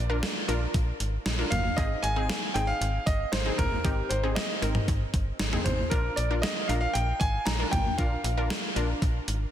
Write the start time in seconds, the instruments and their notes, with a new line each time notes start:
Already playing: fm bass A#1, grand piano D5
0.10 synth pluck D4 F4 A#4
0.23 snare, closed hi-hat
0.48 fm bass A#1, synth pluck D4 F4 A#4, closed hi-hat
0.74 fm bass A#1, kick, closed hi-hat
1.00 fm bass G#1, closed hi-hat
1.26 fm bass A#1, snare, closed hi-hat
1.39 synth pluck D4 F4 A#4
1.50 fm bass G1, grand piano F5, closed hi-hat, mid tom
1.77 fm bass G#1, synth pluck C4 D#4 G#4, grand piano D#5, kick, closed hi-hat
2.03 fm bass G#1, grand piano G#5, closed hi-hat
2.16 synth pluck C4 D#4 G#4
2.29 snare, closed hi-hat
2.54 fm bass G#1, synth pluck C4 D#4 G#4, grand piano G5, closed hi-hat
2.67 grand piano F5
2.81 fm bass G#1, closed hi-hat
3.06 fm bass G1, grand piano D#5, kick, closed hi-hat
3.32 fm bass G#1, grand piano C5, snare, closed hi-hat
3.46 synth pluck C4 D#4 G#4
3.58 fm bass G1, grand piano A#4, kick, closed hi-hat, mid tom
3.84 fm bass G#1, synth pluck C4 D#4 G4, kick, closed hi-hat
4.09 fm bass G#1, grand piano C5, closed hi-hat
4.23 synth pluck C4 D#4 G#4
4.35 grand piano D#5, snare, closed hi-hat
4.62 fm bass G#1, synth pluck C4 D#4 A#4, closed hi-hat
4.75 mid tom
4.88 fm bass G#1, kick, closed hi-hat
5.14 fm bass G1, kick, closed hi-hat
5.39 fm bass G#1, snare, closed hi-hat
5.53 synth pluck C4 D#4 G#4, mid tom
5.64 fm bass G#1, grand piano C5, closed hi-hat, mid tom
5.90 fm bass A#1, synth pluck D4 F4 A#4, grand piano A#4, kick, closed hi-hat
6.16 fm bass A#1, grand piano D5, closed hi-hat
6.31 synth pluck D4 F4 A#4
6.42 grand piano D#5, snare, closed hi-hat
6.68 fm bass A#1, synth pluck D4 F4 A#4, grand piano F5, closed hi-hat
6.81 grand piano F5
6.93 fm bass A#1, grand piano G5, closed hi-hat
7.20 fm bass G#1, grand piano G#5, kick, closed hi-hat
7.45 fm bass A#1, grand piano A#5, snare, closed hi-hat
7.60 synth pluck D4 F4 A#4
7.71 fm bass G#1, grand piano G5, kick, closed hi-hat, mid tom
7.98 fm bass A#1, synth pluck D4 F4 A#4, grand piano F5, kick, closed hi-hat
8.24 fm bass A#1, closed hi-hat
8.37 synth pluck D4 F4 A#4
8.50 snare, closed hi-hat
8.76 fm bass A#1, synth pluck D4 F4 A#4, closed hi-hat
9.02 fm bass A#1, kick, closed hi-hat
9.28 fm bass G#1, closed hi-hat